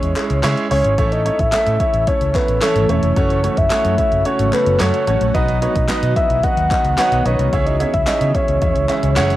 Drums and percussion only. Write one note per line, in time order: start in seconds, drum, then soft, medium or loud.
0.03 closed hi-hat medium
0.16 clap medium
0.16 closed hi-hat medium
0.30 closed hi-hat medium
0.43 snare loud
0.43 clap loud
0.43 clap medium
0.43 closed hi-hat medium
0.57 closed hi-hat medium
0.71 open hi-hat medium
0.84 closed hi-hat medium
0.98 kick loud
0.98 closed hi-hat loud
1.12 closed hi-hat medium
1.26 closed hi-hat medium
1.39 kick loud
1.39 closed hi-hat medium
1.52 snare loud
1.52 clap loud
1.52 clap medium
1.52 closed hi-hat loud
1.67 closed hi-hat medium
1.80 kick loud
1.80 closed hi-hat medium
1.94 closed hi-hat medium
2.07 kick loud
2.07 closed hi-hat medium
2.21 closed hi-hat medium
2.35 kick loud
2.35 clap medium
2.35 closed hi-hat medium
2.48 closed hi-hat medium
2.61 snare loud
2.61 clap loud
2.61 clap medium
2.61 closed hi-hat loud
2.76 closed hi-hat medium
2.89 closed hi-hat medium
3.03 closed hi-hat medium
3.16 kick loud
3.16 closed hi-hat loud
3.30 closed hi-hat medium
3.44 closed hi-hat medium
3.57 kick loud
3.57 closed hi-hat medium
3.70 snare loud
3.70 clap loud
3.70 clap medium
3.70 closed hi-hat medium
3.85 closed hi-hat medium
3.98 kick loud
3.98 closed hi-hat medium
4.12 closed hi-hat medium
4.25 closed hi-hat medium
4.39 closed hi-hat medium
4.53 clap medium
4.53 closed hi-hat medium
4.66 closed hi-hat medium
4.79 snare loud
4.79 clap loud
4.79 clap medium
4.79 closed hi-hat medium
4.94 closed hi-hat medium
5.07 closed hi-hat medium
5.21 closed hi-hat medium
5.35 kick loud
5.35 closed hi-hat loud
5.48 closed hi-hat medium
5.62 closed hi-hat medium
5.76 kick loud
5.76 closed hi-hat medium
5.88 snare medium
5.88 clap medium
5.88 clap loud
5.88 closed hi-hat medium
6.03 closed hi-hat medium
6.16 kick loud
6.16 closed hi-hat medium
6.30 closed hi-hat medium
6.43 kick loud
6.43 closed hi-hat medium
6.57 closed hi-hat medium
6.71 kick loud
6.71 clap medium
6.71 closed hi-hat medium
6.85 closed hi-hat medium
6.98 snare loud
6.98 clap loud
6.98 clap medium
6.98 closed hi-hat loud
7.12 closed hi-hat medium
7.26 closed hi-hat medium
7.39 closed hi-hat medium
7.53 kick loud
7.53 closed hi-hat loud
7.67 closed hi-hat medium
7.80 closed hi-hat medium
7.94 kick loud
7.94 closed hi-hat medium
8.07 snare loud
8.07 clap medium
8.07 clap loud
8.07 closed hi-hat medium
8.21 closed hi-hat medium
8.35 kick loud
8.35 closed hi-hat medium
8.48 closed hi-hat medium
8.62 kick loud
8.62 closed hi-hat medium
8.76 closed hi-hat medium
8.89 clap medium
8.89 closed hi-hat medium
9.03 closed hi-hat medium
9.16 snare loud
9.16 clap loud
9.16 clap medium
9.16 closed hi-hat medium
9.30 closed hi-hat medium